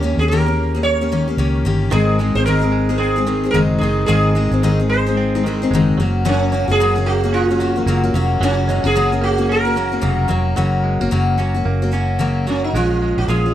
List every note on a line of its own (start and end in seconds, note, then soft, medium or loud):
0.00 0.14 D#2 loud
0.00 0.19 D#3 medium
0.00 0.19 A#3 medium
0.00 0.21 C#4 medium
0.04 0.19 C#4 medium
0.04 0.20 G4 medium
0.17 1.33 D#2 medium
0.17 0.31 G4 soft
0.17 0.24 G#4 medium
0.22 0.31 A#3 soft
0.22 0.31 C#4 medium
0.28 0.47 D#3 medium
0.28 0.83 A#4 medium
0.32 0.47 A#3 medium
0.32 0.47 C#4 medium
0.32 0.45 G4 medium
0.46 0.74 A#3 soft
0.46 0.74 C#4 medium
0.46 0.73 G4 medium
0.75 1.02 A#3 soft
0.75 1.01 C#4 medium
0.75 1.00 G4 medium
0.83 1.60 C#5 loud
1.01 1.11 A#3 soft
1.01 1.11 C#4 soft
1.01 1.11 G4 medium
1.12 1.27 D#3 medium
1.12 1.27 A#3 medium
1.12 1.27 C#4 medium
1.12 1.26 G4 medium
1.28 1.37 A#3 soft
1.28 1.38 C#4 soft
1.28 1.38 G4 medium
1.37 1.62 C#2 medium
1.37 1.64 D#3 medium
1.37 1.65 A#3 medium
1.37 1.65 C#4 medium
1.37 1.65 G4 medium
1.64 1.89 G1 medium
1.64 1.90 D#3 medium
1.64 1.92 A#3 medium
1.64 1.92 C#4 medium
1.64 1.92 G4 medium
1.91 2.32 G#1 loud
1.91 2.18 G#2 medium
1.91 2.18 D#3 medium
1.91 2.18 G#3 medium
1.91 2.19 C4 medium
1.91 2.19 D#4 medium
1.91 2.35 G#4 medium
1.91 2.19 G#4 medium
2.19 2.35 G#3 medium
2.19 2.36 C4 medium
2.19 2.36 D#4 medium
2.19 2.34 G#4 medium
2.35 3.50 G#1 medium
2.35 2.46 G#3 soft
2.35 2.46 C4 soft
2.35 2.47 D#4 soft
2.35 2.46 G#4 medium
2.35 2.45 C5 loud
2.46 2.62 G#2 medium
2.46 2.62 D#3 medium
2.46 2.63 G#3 medium
2.46 2.61 C4 medium
2.46 2.61 D#4 medium
2.46 2.60 G#4 medium
2.46 2.97 A#4 loud
2.61 2.89 G#3 soft
2.61 2.89 C4 soft
2.61 2.88 D#4 medium
2.61 2.88 G#4 medium
2.72 3.53 G#3 medium
2.89 3.17 G#3 soft
2.89 3.17 C4 soft
2.89 3.15 D#4 medium
2.89 3.15 G#4 medium
2.98 4.08 C4 medium
2.98 3.50 G#4 medium
3.16 3.25 G#3 soft
3.16 3.26 C4 medium
3.16 3.27 D#4 medium
3.16 3.27 G#4 medium
3.26 3.80 D#3 medium
3.26 3.43 G#3 medium
3.26 3.43 C4 medium
3.26 3.44 D#4 medium
3.26 3.42 G#4 medium
3.43 3.53 G#3 soft
3.43 3.53 C4 soft
3.43 3.53 D#4 soft
3.43 3.54 G#4 soft
3.51 3.79 F#1 medium
3.51 3.81 G#2 medium
3.51 3.81 D#3 medium
3.51 3.80 G#3 medium
3.51 3.81 C4 medium
3.51 3.81 D#4 medium
3.51 3.58 A#4 loud
3.56 3.82 G#4 medium
3.78 4.06 F#1 medium
3.78 4.07 D#3 medium
3.78 4.07 G#3 medium
3.78 4.05 G#4 medium
3.83 4.08 C4 medium
3.83 4.08 D#4 medium
3.83 4.08 G#4 medium
4.06 4.48 G#1 loud
4.06 4.35 G#2 medium
4.06 4.35 D#3 medium
4.06 4.34 G#3 medium
4.06 4.35 C4 medium
4.06 4.35 D#4 medium
4.06 4.84 G#4 medium
4.06 4.35 G#4 medium
4.35 4.51 G#3 medium
4.35 4.52 C4 medium
4.35 4.51 D#4 medium
4.35 4.50 G#4 medium
4.51 5.66 G#1 loud
4.51 4.63 G#3 soft
4.51 4.63 C4 medium
4.51 4.63 D#4 soft
4.51 4.62 G#4 medium
4.63 4.79 G#2 medium
4.63 4.79 D#3 medium
4.63 4.79 G#3 medium
4.63 4.79 C4 medium
4.63 4.79 D#4 medium
4.63 4.78 G#4 medium
4.80 5.07 G#3 soft
4.80 5.07 C4 soft
4.80 5.06 D#4 medium
4.80 5.05 G#4 medium
4.90 5.70 G#3 medium
4.90 5.94 C5 medium
5.07 5.34 G#3 soft
5.07 5.34 C4 medium
5.07 5.33 D#4 medium
5.07 5.33 G#4 medium
5.17 6.04 C4 medium
5.35 5.45 G#3 medium
5.35 5.45 C4 medium
5.35 5.45 D#4 medium
5.35 5.45 G#4 medium
5.44 5.97 D#3 medium
5.44 5.61 G#3 medium
5.44 5.61 C4 medium
5.44 5.62 D#4 medium
5.48 5.61 G#4 medium
5.62 5.73 G#3 soft
5.62 5.72 C4 medium
5.62 5.72 D#4 medium
5.62 5.71 G#4 medium
5.70 5.95 F#1 medium
5.70 5.99 G#2 medium
5.75 6.00 D#3 medium
5.75 5.99 G#3 medium
5.75 5.99 C4 medium
5.75 6.00 D#4 medium
5.75 6.00 G#4 medium
5.97 6.64 F#1 loud
5.97 6.24 F#3 medium
5.97 6.25 A#3 medium
5.97 6.25 C#4 medium
6.02 6.25 F#4 medium
6.25 6.52 F#2 medium
6.25 6.52 C#3 medium
6.25 6.51 F#3 medium
6.25 6.52 A#3 medium
6.25 6.52 C#4 medium
6.25 6.71 C#4 loud
6.25 6.52 F#4 medium
6.52 6.68 F#3 medium
6.52 6.68 A#3 medium
6.52 6.68 C#4 medium
6.52 6.66 F#4 medium
6.68 7.83 F#1 loud
6.68 6.80 F#3 soft
6.68 6.80 A#3 medium
6.68 6.79 C#4 medium
6.68 6.79 F#4 medium
6.68 7.09 G#4 loud
6.80 6.96 F#2 medium
6.80 6.96 C#3 medium
6.80 6.96 F#3 medium
6.80 6.96 A#3 medium
6.80 6.96 C#4 medium
6.80 6.94 F#4 medium
6.96 7.23 F#3 medium
6.96 7.23 A#3 medium
6.96 7.23 C#4 medium
6.96 7.22 F#4 medium
7.06 7.86 A#3 medium
7.06 7.33 F#4 medium
7.24 7.51 F#3 soft
7.24 7.50 A#3 soft
7.24 7.50 C#4 medium
7.24 7.49 F#4 medium
7.33 8.41 C#4 medium
7.33 8.10 F4 medium
7.50 7.59 F#3 soft
7.50 7.60 A#3 medium
7.50 7.60 C#4 medium
7.50 7.60 F#4 medium
7.60 7.76 F#3 medium
7.60 7.76 A#3 medium
7.60 7.75 C#4 medium
7.60 7.75 F#4 medium
7.76 7.87 F#3 soft
7.76 7.87 A#3 soft
7.76 7.87 C#4 soft
7.76 7.87 F#4 soft
7.86 8.11 F#1 medium
7.86 8.03 F#2 medium
7.86 8.04 C#3 medium
7.86 8.04 F#3 medium
7.86 8.03 A#3 medium
7.86 8.03 C#4 medium
7.86 8.02 F#4 medium
8.03 8.13 F#3 medium
8.03 8.14 A#3 soft
8.03 8.14 C#4 medium
8.03 8.14 F#4 medium
8.14 8.39 F1 loud
8.14 8.41 F#3 medium
8.14 8.42 A#3 medium
8.14 8.42 C#4 medium
8.14 8.42 F#4 medium
8.40 8.80 F#1 loud
8.40 8.69 F#2 medium
8.40 8.69 C#3 medium
8.40 8.68 F#3 medium
8.40 8.68 A#3 medium
8.40 8.87 C#4 medium
8.40 8.69 C#4 medium
8.40 8.69 F#4 loud
8.68 8.85 F#3 medium
8.68 8.84 G#3 medium
8.68 8.85 A#3 medium
8.68 8.84 C#4 medium
8.68 8.84 F#4 medium
8.83 9.99 F#1 medium
8.83 8.95 F#3 soft
8.83 8.95 A#3 soft
8.83 8.95 C#4 medium
8.83 8.95 F#4 medium
8.83 9.24 G#4 medium
8.96 9.11 F#2 medium
8.96 9.12 C#3 medium
8.96 9.12 F#3 medium
8.96 9.12 A#3 medium
8.96 9.12 C#4 medium
8.96 9.11 F#4 medium
9.12 9.39 F#3 soft
9.12 9.38 A#3 medium
9.12 9.37 C#4 soft
9.12 9.37 F#4 medium
9.21 10.02 A#3 medium
9.21 9.51 F#4 medium
9.38 9.66 F#3 soft
9.38 9.65 A#3 medium
9.38 9.65 C#4 medium
9.38 9.64 F#4 medium
9.49 11.38 C#4 medium
9.49 10.28 A#4 loud
9.65 9.75 F#3 soft
9.65 9.76 A#3 soft
9.65 9.76 C#4 medium
9.65 9.76 F#4 medium
9.76 9.92 F#3 medium
9.76 9.92 A#3 medium
9.76 9.91 C#4 medium
9.76 9.90 F#4 medium
9.92 10.01 F#3 soft
9.92 10.01 A#3 soft
9.92 10.01 C#4 soft
9.92 10.02 F#4 soft
10.01 10.28 F1 medium
10.01 10.30 F#2 medium
10.01 10.29 C#3 medium
10.01 10.27 F#3 medium
10.01 10.27 A#3 medium
10.01 10.29 C#4 medium
10.01 10.29 F#4 medium
10.28 10.55 F1 medium
10.28 10.56 F#3 medium
10.28 10.57 A#3 medium
10.28 10.57 C#4 medium
10.28 10.56 F#4 medium
10.56 10.98 F#1 loud
10.56 11.00 F#2 medium
10.56 11.01 C#3 medium
10.56 11.01 F#3 medium
10.56 11.00 A#3 medium
10.56 11.00 C#4 medium
10.56 11.00 F#4 medium
10.84 11.01 G#3 medium
11.01 11.11 F#1 medium
11.01 11.10 F#3 soft
11.01 11.11 A#3 medium
11.01 11.11 C#4 medium
11.01 11.11 F#4 medium
11.11 11.62 F#1 loud
11.11 11.38 F#2 medium
11.11 11.38 C#3 medium
11.11 11.36 F#3 medium
11.11 11.37 A#3 medium
11.11 11.38 C#4 medium
11.11 11.38 F#4 medium
11.38 11.54 F#3 medium
11.38 11.55 A#3 medium
11.38 11.55 C#4 medium
11.38 11.53 F#4 medium
11.54 11.82 F#3 soft
11.54 11.83 A#3 soft
11.54 11.81 C#4 soft
11.54 11.81 F#4 medium
11.65 12.70 F#1 loud
11.65 12.20 A#3 medium
11.82 11.90 F#3 soft
11.82 11.91 A#3 soft
11.82 11.92 C#4 medium
11.82 11.93 F#4 medium
11.91 12.19 F#3 medium
11.91 12.19 A#3 medium
11.91 12.19 C#4 medium
11.91 12.19 F#4 medium
12.19 12.46 F#2 medium
12.19 12.47 C#3 medium
12.19 12.45 F#3 medium
12.19 12.46 A#3 medium
12.19 12.47 C#4 medium
12.19 12.47 F#4 medium
12.47 12.74 F#3 medium
12.47 12.74 A#3 medium
12.47 12.75 C#4 medium
12.47 12.64 C#4 medium
12.47 12.75 F#4 medium
12.64 12.75 D#4 medium
12.73 13.14 A#1 medium
12.73 13.27 A#2 medium
12.73 13.29 F3 medium
12.73 13.30 G#3 medium
12.73 13.29 C#4 medium
12.73 13.18 F4 medium
12.73 13.30 F4 medium
13.02 13.54 G#3 medium
13.17 13.27 A#1 medium
13.17 13.29 F#4 medium
13.28 13.54 A#1 loud
13.28 13.45 A#2 medium
13.28 13.45 F3 medium
13.28 13.45 G#3 medium
13.28 13.45 C#4 medium
13.28 13.44 F4 medium
13.28 13.53 G#4 medium
13.46 13.54 G#3 soft
13.46 13.54 C#4 soft
13.46 13.54 F4 medium